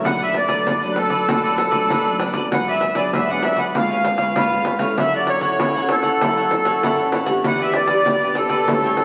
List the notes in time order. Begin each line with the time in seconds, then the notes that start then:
Already playing: F#3 A3 D4
0.04 B1 B2 D4 A4 B4 D5 F#5, pandeiro
0.20 A4 B4 D5 E5, pandeiro
0.33 D5, muted cavaquinho stroke, pandeiro
0.47 F#3 A3 D4 A4 B4 D5, pandeiro
0.66 F#2 D4 A4 B4 D5, pandeiro
0.82 F#3 A3 D4 A4 B4 D5, pandeiro
0.91 B4
0.96 A4, pandeiro
1.10 A4 B4 D5, pandeiro
1.28 F#2 B2 F#3 A3 D4 A4 B4 D5, pandeiro
1.44 A4 B4 D5, pandeiro
1.57 muted cavaquinho stroke, pandeiro
1.71 F#3 A3 D4 A4 B4 D5, pandeiro
1.89 A1 F#2 D4 A4 B4 D5, pandeiro
2.06 F#3 A3 D4, pandeiro
2.19 D4 A4 B4 D5, pandeiro
2.33 F#3 B3 D4 A4 B4 D5, pandeiro
2.51 G#1 G#2 F#4 G#4 B4 D5 F#5, pandeiro
2.68 G#4 B4 D5 E5, pandeiro
2.81 muted cavaquinho stroke, pandeiro
2.95 F#3 B3 D4 G#4 B4 D5, pandeiro
3.13 D2 G#2 F#4 G#4 B4 D5 E5, pandeiro
3.30 F#3 B3 D4 G#4 B4 D5 F#5, pandeiro
3.43 E5, pandeiro
3.57 G#4 B4 D5 F#5, pandeiro
3.74 C#2 C#3 G#3 B3 F4 B4 C#5 F5, pandeiro
3.90 B4 C#5 F5, pandeiro
4.04 muted cavaquinho stroke, pandeiro
4.18 G#3 B3 F4 B4 C#5 F5, pandeiro
4.36 C#2 G#2 F4 B4 C#5 F5, pandeiro
4.52 G#3 B3 F4, pandeiro
4.65 F4 B4 C#5 F5, pandeiro
4.79 C#4 E4 A4 B4 C#5 F5, pandeiro
4.98 F#2 F#3 E4 A4 C#5 E5 F#5, pandeiro
5.14 A4 C#5 D5 F#5, pandeiro
5.27 C#5, muted cavaquinho stroke, pandeiro
5.41 C#4 E4 A4 C#5 F#5, pandeiro
5.59 C#2 C#3 E4 A4 C#5 F#5, pandeiro
5.76 C#4 E4 A4 C#5 F#5, pandeiro
5.89 A4, pandeiro
6.03 A4 C#5 F#5, pandeiro
6.21 C#2 F#3 C#4 E4 A4 C#5 F#5, pandeiro
6.37 A4 C#5 F#5, pandeiro
6.51 muted cavaquinho stroke, pandeiro
6.65 C#4 E4 A4 C#5 F#5, pandeiro
6.83 F#2 C#3 E4 A4 C#5 F#5, pandeiro
7.00 C#4 E4 A4, pandeiro
7.12 E4 A4 C#5 F#5, pandeiro
7.26 B3 D4 G4 A4 C#5 F#5, pandeiro
7.44 E2 E3 E4 G4 B4 D5 F#5, pandeiro
7.59 G4 B4 D5 E5, pandeiro
7.74 D5, muted cavaquinho stroke, pandeiro
7.87 B3 D4 G4 B4 D5, pandeiro
8.05 E2 B2 E4 G4 B4 D5, pandeiro
8.22 B3 D4 G4 B4 D5, pandeiro
8.35 A4, pandeiro
8.49 G4 B4 D5, pandeiro
8.68 A2 G3 C#4 E4 A4 C#5 G5, pandeiro
8.84 A4 C#5 G5, pandeiro
8.97 muted cavaquinho stroke, pandeiro